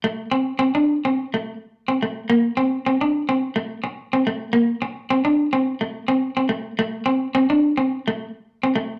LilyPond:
\new Staff \with { instrumentName = "Clean electric guitar" } { \time 4/4 \key a \phrygian \tempo 4 = 107 a8 c'8 c'16 d'8 c'8 a8 r8 c'16 a8 | bes8 c'8 c'16 d'8 c'8 a8 r8 c'16 a8 | bes8 r8 c'16 d'8 c'8 a8 c'8 c'16 a8 | a8 c'8 c'16 d'8 c'8 a8 r8 c'16 a8 | }